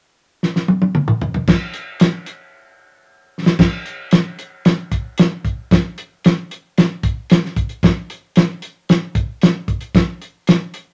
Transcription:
0.43 snare
0.56 snare
0.68 high tom
0.82 high tom
0.95 mid tom
1.08 mid tom
1.21 floor tom
1.34 floor tom
1.47 kick, snare, crash
1.74 closed hi-hat
2.00 snare, closed hi-hat
2.26 closed hi-hat
3.46 snare
3.59 kick, snare, crash
3.86 closed hi-hat
4.11 snare, closed hi-hat
4.39 closed hi-hat
4.65 snare, closed hi-hat
4.92 kick, closed hi-hat
5.18 snare, closed hi-hat
5.45 kick, closed hi-hat
5.71 kick, snare, closed hi-hat
5.98 closed hi-hat
6.24 snare, closed hi-hat
6.51 closed hi-hat
6.78 snare, closed hi-hat
7.03 kick, closed hi-hat
7.30 snare, closed hi-hat
7.45 snare
7.56 kick, closed hi-hat
7.69 closed hi-hat
7.83 kick, snare, closed hi-hat
8.10 closed hi-hat
8.36 snare, closed hi-hat
8.62 closed hi-hat
8.89 snare, closed hi-hat
9.15 kick, closed hi-hat
9.42 snare, closed hi-hat
9.68 kick, closed hi-hat
9.81 closed hi-hat
9.95 kick, snare, closed hi-hat
10.22 closed hi-hat
10.47 snare, closed hi-hat
10.74 closed hi-hat

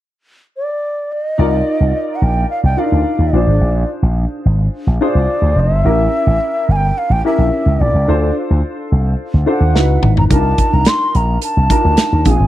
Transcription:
0.57 D5
1.12 D5
1.23 D#5
1.38 C2 D#4 F4 A#4 D5
1.80 C2
2.15 F#5
2.22 A#1 G5
2.50 F5
2.63 C2 G5
2.77 D4 F4 A#4 D5 F5
2.84 D#4
2.92 D2
3.19 D#2
3.33 A#1 D4 F4 G#4 C5 D5
3.47 G#1
3.61 A#1
4.02 A#1
4.45 G#1
4.87 A#1
5.01 D4 F4 G#4 C5
5.05 D5 D#5
5.15 C2
5.42 D2
5.56 F1
5.60 E5
5.71 G1
5.84 A1 C#4 E4 G4 A#4
6.27 A1
6.69 G1 G#5
6.76 G5
6.98 F5
7.10 A1 G5
7.24 C#4 E4 G4 A#4 E5
7.38 A#1
7.66 C#2
7.81 A#1 D5
7.94 C#2
8.08 D2 D4 F4 A4 C5
8.51 D2
8.92 C2
9.34 D2
9.46 D4 F4 A4 C5
9.50 F#5
9.60 D#2
9.74 C#2 D#4 E4 F#4 B4, snare
10.02 G#1, mid tom
10.17 A#5, floor tom
10.30 C2 D4 D#4 F4 A#4 A5, kick, closed hi-hat
10.58 kick, closed hi-hat
10.73 C2 A#5
10.85 C6, snare, closed hi-hat
11.15 A#1 A#5, closed hi-hat
11.42 A5, closed hi-hat
11.57 C2
11.70 D4 D#4 F4 A#4, kick, closed hi-hat
11.85 D2
11.97 snare, closed hi-hat
12.13 D#2
12.25 A#1 C4 D4 F4 G#4 A5, kick, closed hi-hat
12.30 G#5
12.40 G#1

